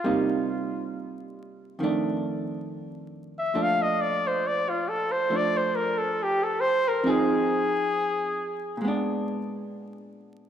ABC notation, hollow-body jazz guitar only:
X:1
M:4/4
L:1/8
Q:"Swing" 1/4=68
K:Bb
V:1 name="Hollow-body jazz guitar"
[C,G,B,E]4 [F,,E,A,D]4 | [B,,F,A,D]4 [F,A,D]4 | [F,CE_A]4 [B,,_A,_CD]4 |]